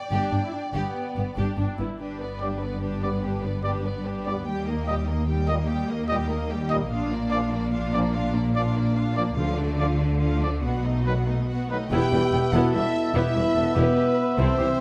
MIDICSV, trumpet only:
0, 0, Header, 1, 2, 480
1, 0, Start_track
1, 0, Tempo, 417246
1, 2301, Time_signature, 12, 3, 24, 8
1, 4201, Tempo, 407886
1, 10441, Tempo, 422535
1, 13801, Tempo, 412655
1, 17167, End_track
2, 0, Start_track
2, 0, Title_t, "Trumpet"
2, 0, Program_c, 0, 56
2, 2765, Note_on_c, 0, 74, 39
2, 2853, Note_off_c, 0, 74, 0
2, 3480, Note_on_c, 0, 74, 37
2, 3565, Note_off_c, 0, 74, 0
2, 4184, Note_on_c, 0, 74, 42
2, 4274, Note_off_c, 0, 74, 0
2, 4918, Note_on_c, 0, 74, 44
2, 5004, Note_off_c, 0, 74, 0
2, 5641, Note_on_c, 0, 75, 46
2, 5725, Note_off_c, 0, 75, 0
2, 6350, Note_on_c, 0, 75, 46
2, 6437, Note_off_c, 0, 75, 0
2, 7060, Note_on_c, 0, 75, 52
2, 7149, Note_off_c, 0, 75, 0
2, 7784, Note_on_c, 0, 75, 52
2, 7871, Note_off_c, 0, 75, 0
2, 8505, Note_on_c, 0, 74, 56
2, 8591, Note_off_c, 0, 74, 0
2, 9237, Note_on_c, 0, 74, 51
2, 9321, Note_off_c, 0, 74, 0
2, 9969, Note_on_c, 0, 74, 54
2, 10050, Note_off_c, 0, 74, 0
2, 10674, Note_on_c, 0, 74, 52
2, 10757, Note_off_c, 0, 74, 0
2, 11393, Note_on_c, 0, 74, 48
2, 11474, Note_off_c, 0, 74, 0
2, 12116, Note_on_c, 0, 74, 42
2, 12197, Note_off_c, 0, 74, 0
2, 12836, Note_on_c, 0, 71, 43
2, 12920, Note_off_c, 0, 71, 0
2, 13565, Note_on_c, 0, 71, 41
2, 13648, Note_off_c, 0, 71, 0
2, 13799, Note_on_c, 0, 76, 64
2, 17167, Note_off_c, 0, 76, 0
2, 17167, End_track
0, 0, End_of_file